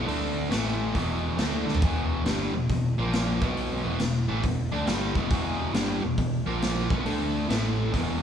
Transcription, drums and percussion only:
0.08 open hi-hat medium
0.51 snare loud
0.51 open hi-hat medium
0.67 snare soft
0.95 kick medium
0.95 open hi-hat soft
1.38 snare loud
1.38 open hi-hat soft
1.68 snare soft
1.75 floor tom medium
1.82 kick loud
1.82 open hi-hat medium
2.26 snare loud
2.26 open hi-hat medium
2.69 kick medium
2.69 open hi-hat soft
3.13 snare loud
3.13 open hi-hat soft
3.42 kick loud
3.57 open hi-hat soft
3.99 snare loud
3.99 open hi-hat medium
4.43 kick medium
4.43 open hi-hat medium
4.87 snare loud
4.87 open hi-hat medium
5.15 kick medium
5.30 kick loud
5.30 open hi-hat medium
5.74 snare loud
5.74 open hi-hat medium
6.18 kick medium
6.18 open hi-hat soft
6.62 snare medium
6.62 open hi-hat soft
6.90 kick loud
7.06 open hi-hat medium
7.50 snare loud
7.50 open hi-hat medium
7.94 kick medium
7.94 open hi-hat medium

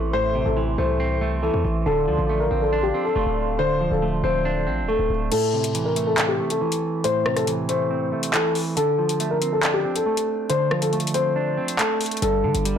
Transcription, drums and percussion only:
5.32 closed hi-hat medium
5.32 crash loud
5.64 closed hi-hat medium
5.75 closed hi-hat medium
5.96 closed hi-hat medium
6.18 clap loud
6.18 closed hi-hat medium
6.50 closed hi-hat medium
6.72 closed hi-hat medium
7.04 closed hi-hat medium
7.26 cross-stick loud
7.37 cross-stick medium
7.37 closed hi-hat medium
7.47 closed hi-hat medium
7.69 closed hi-hat medium
8.23 closed hi-hat medium
8.34 clap loud
8.34 closed hi-hat medium
8.55 open hi-hat medium
8.77 closed hi-hat medium
9.09 closed hi-hat medium
9.20 closed hi-hat medium
9.42 closed hi-hat medium
9.63 clap loud
9.63 closed hi-hat medium
9.96 closed hi-hat medium
10.17 closed hi-hat medium
10.50 closed hi-hat medium
10.71 cross-stick medium
10.82 closed hi-hat medium
10.93 closed hi-hat soft
11.00 closed hi-hat medium
11.07 closed hi-hat medium
11.14 closed hi-hat medium
11.68 closed hi-hat medium
11.79 clap loud
11.79 closed hi-hat medium
12.01 closed hi-hat medium
12.01 open hi-hat medium
12.06 closed hi-hat medium
12.11 closed hi-hat medium
12.17 closed hi-hat medium
12.22 closed hi-hat medium
12.55 closed hi-hat medium
12.65 closed hi-hat medium

